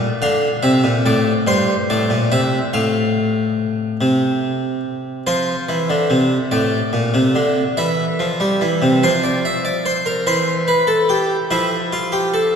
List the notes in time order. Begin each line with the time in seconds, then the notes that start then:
Already playing: D5
0.22 D3 F5
0.63 C3 E5
0.84 A#2
1.06 A2 D5
1.47 G2 C5
1.90 A2 D5
2.10 A#2
2.32 C3 E5
2.73 A2 F5
4.01 C3
5.27 F3 C5
5.69 E3
5.90 D3
6.10 C3
6.51 A2 D5
6.93 A#2
7.14 C3
7.35 D3
7.77 E3 E5
8.19 F3
8.40 G3
8.61 E3
8.82 C3
9.03 F3 C5
9.23 D5
9.45 E5
9.65 D5
9.86 C5
10.06 A#4
10.27 E3 C5
10.68 B4
10.87 A4
11.09 G4
11.51 F3 E4
11.93 F4
12.12 G4
12.34 A4